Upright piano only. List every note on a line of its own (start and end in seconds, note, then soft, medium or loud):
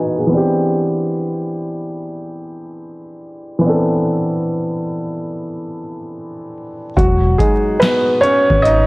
0.00 0.25 E3 soft
0.00 0.31 G#3 soft
0.00 0.19 B3 soft
0.00 0.33 D#4 medium
0.00 0.33 F#4 medium
0.00 0.18 G#4 soft
0.00 0.16 B4 medium
0.00 0.32 D#5 medium
0.00 0.33 E5 medium
0.00 0.33 F#5 medium
0.00 0.33 G#5 medium
0.18 0.28 B3 soft
0.18 0.57 G#4 medium
0.27 3.57 E3 medium
0.27 3.59 B3 medium
0.32 3.61 C4 medium
0.32 3.62 D4 medium
0.37 3.63 G4 medium
3.59 6.91 E3 medium
3.59 6.92 B3 medium
3.64 6.93 C4 medium
3.64 6.94 D4 medium
3.69 6.96 A4 medium
6.97 7.37 F#3 medium
6.97 7.36 F#4 medium
7.38 8.60 F#3 medium
7.38 7.79 G#3 medium
7.38 8.61 D#4 medium
7.38 7.77 G#4 medium
7.80 8.20 B3 medium
7.80 8.19 B4 loud
8.21 8.62 C#4 medium
8.21 8.65 C#5 loud
8.62 8.87 D#4 medium
8.62 8.87 D#5 loud